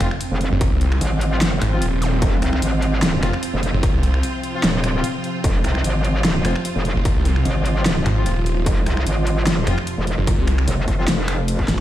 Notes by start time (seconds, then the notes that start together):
Already playing: C3 F3 C4 F4, impact
0.00 F1 F3 C4 F4, finger snap, closed hi-hat
0.11 finger snap
0.21 closed hi-hat
0.31 F1
0.41 closed hi-hat
0.52 F#1
0.61 kick, closed hi-hat
0.72 C2
0.81 closed hi-hat
0.92 finger snap
1.01 G#1, closed hi-hat
1.21 closed hi-hat
1.32 F3 C4 F4
1.41 G1, snare, closed hi-hat
1.62 G#1, finger snap, closed hi-hat
1.72 F3 C4 F4
1.82 D#1, closed hi-hat
2.02 closed hi-hat, zap
2.22 F1, kick, closed hi-hat
2.42 C2, finger snap, closed hi-hat
2.53 finger snap
2.62 G#1, closed hi-hat
2.82 closed hi-hat
3.02 snare, closed hi-hat
3.23 F1 F3 C4 F4, finger snap, closed hi-hat
3.33 finger snap
3.43 closed hi-hat
3.54 F1
3.63 closed hi-hat
3.74 F#1
3.83 kick, closed hi-hat
3.94 C2
4.03 closed hi-hat
4.14 finger snap
4.23 closed hi-hat
4.43 closed hi-hat
4.54 F3 C4 F4
4.64 D#1, snare, closed hi-hat
4.84 finger snap, closed hi-hat
4.95 F3 C4 F4
5.04 closed hi-hat
5.24 closed hi-hat
5.44 F1 F4, kick, closed hi-hat
5.64 C2, finger snap, closed hi-hat
5.75 finger snap
5.84 G#1, closed hi-hat
6.05 closed hi-hat
6.25 snare, closed hi-hat
6.45 F1 F3 C4 F4, finger snap, closed hi-hat
6.56 finger snap
6.65 closed hi-hat
6.76 F1
6.85 closed hi-hat
6.96 F#1
7.05 kick, closed hi-hat
7.16 C2
7.25 closed hi-hat
7.36 finger snap
7.45 G#1, closed hi-hat
7.66 closed hi-hat
7.76 F3 C4 F4
7.86 snare, closed hi-hat
8.06 G#1, finger snap, closed hi-hat
8.17 F3 C4 F4
8.26 D#1, closed hi-hat
8.46 closed hi-hat
8.66 F1, kick, closed hi-hat
8.86 C2, finger snap, closed hi-hat
8.97 finger snap
9.07 G#1, closed hi-hat
9.27 closed hi-hat
9.47 snare, closed hi-hat
9.67 F1 F3 C4 F4, finger snap, closed hi-hat
9.78 finger snap
9.87 closed hi-hat
9.98 F1
10.07 closed hi-hat
10.18 F#1
10.27 kick, closed hi-hat
10.38 C2
10.47 finger snap, closed hi-hat
10.58 finger snap
10.68 F#1, closed hi-hat
10.88 kick, closed hi-hat
10.99 F3 C4 F4
11.08 F1, snare, closed hi-hat
11.28 finger snap, closed hi-hat
11.48 closed hi-hat
11.59 kick
11.68 G#1, snare, closed hi-hat